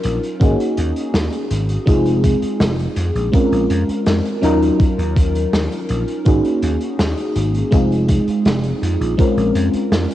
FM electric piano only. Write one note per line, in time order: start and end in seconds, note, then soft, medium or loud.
0.00 0.33 F#3 medium
0.00 0.33 C#4 medium
0.00 0.34 D#4 medium
0.00 0.34 F4 medium
0.00 0.34 A#4 loud
0.40 1.79 A#3 medium
0.40 1.80 C#4 medium
0.40 1.80 D#4 medium
0.40 1.80 F#4 medium
0.40 1.81 G#4 medium
1.86 3.26 G#3 medium
1.86 3.26 C4 medium
1.86 3.26 D#4 medium
1.86 3.27 F4 medium
1.86 3.27 G#4 medium
3.32 4.35 G#3 medium
3.32 4.36 C4 medium
3.32 4.36 C#4 medium
3.32 4.36 F4 medium
3.32 4.37 A#4 medium
4.42 6.18 F#3 medium
4.42 6.18 C#4 medium
4.42 6.19 D#4 medium
4.42 6.19 F4 medium
4.42 6.20 A#4 loud
6.25 7.65 A#3 medium
6.25 7.65 C#4 medium
6.25 7.65 D#4 medium
6.25 7.66 F#4 medium
6.25 7.66 G#4 medium
7.71 9.11 G#3 medium
7.71 9.11 C4 medium
7.71 9.12 D#4 medium
7.71 9.12 F4 medium
7.71 9.12 G#4 medium
9.17 10.14 G#3 medium
9.17 10.14 C4 medium
9.17 10.14 C#4 medium
9.17 10.14 F4 medium
9.17 10.14 A#4 medium